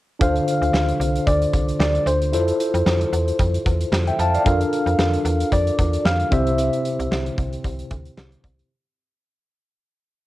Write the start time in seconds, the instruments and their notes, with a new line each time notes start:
0.19 fm bass D2, tine electric piano D3 D4 F4 A4 C5, soft synth lead F5, kick, closed hi-hat
0.36 closed hi-hat
0.48 closed hi-hat
0.62 fm bass D2, closed hi-hat
0.73 fm bass D2, snare
0.89 closed hi-hat
1.00 fm bass C2, closed hi-hat
1.15 closed hi-hat
1.27 fm bass D2, soft synth lead D5, kick, closed hi-hat
1.42 closed hi-hat
1.53 fm bass C2, kick, closed hi-hat
1.68 closed hi-hat
1.80 fm bass D2, soft synth lead D5, snare
1.95 closed hi-hat
2.06 fm bass D2, soft synth lead C5, closed hi-hat
2.22 closed hi-hat
2.32 fm bass F2, tine electric piano E4 F4 A4 C5, closed hi-hat
2.48 closed hi-hat
2.60 closed hi-hat
2.74 fm bass F2, closed hi-hat
2.86 fm bass F2, snare
3.01 closed hi-hat
3.13 fm bass E2, closed hi-hat
3.28 closed hi-hat
3.39 fm bass F2, kick, closed hi-hat
3.54 closed hi-hat
3.66 fm bass E2, kick, closed hi-hat
3.81 closed hi-hat
3.92 fm bass F2, snare
4.07 tine electric piano E5 G5, closed hi-hat
4.19 fm bass F2, tine electric piano F5 A5, closed hi-hat
4.34 tine electric piano D5 F5, closed hi-hat
4.45 fm bass F2, tine electric piano D4 F4 A4 A#4, soft synth lead F5, kick, closed hi-hat
4.61 closed hi-hat
4.73 closed hi-hat
4.86 fm bass F2, closed hi-hat
4.99 fm bass F2, snare
5.13 closed hi-hat
5.25 fm bass E2, closed hi-hat
5.40 closed hi-hat
5.52 fm bass F2, soft synth lead D5, kick, closed hi-hat
5.67 closed hi-hat
5.79 fm bass E2, kick, closed hi-hat
5.93 closed hi-hat
6.05 fm bass F2, soft synth lead F5, snare
6.20 closed hi-hat
6.31 fm bass C2, tine electric piano C3 C4 E4 G4 C5, soft synth lead E5, kick, closed hi-hat
6.47 closed hi-hat
6.58 closed hi-hat
6.73 closed hi-hat
6.85 closed hi-hat
6.99 fm bass C2, closed hi-hat
7.11 fm bass C2, snare
7.26 closed hi-hat
7.38 fm bass C2, kick, closed hi-hat
7.53 closed hi-hat
7.64 fm bass C2, kick, closed hi-hat
7.79 closed hi-hat
7.91 fm bass D2, kick, closed hi-hat
8.05 closed hi-hat
8.17 fm bass C2, snare
8.32 closed hi-hat
8.44 fm bass C2, kick, closed hi-hat
8.59 closed hi-hat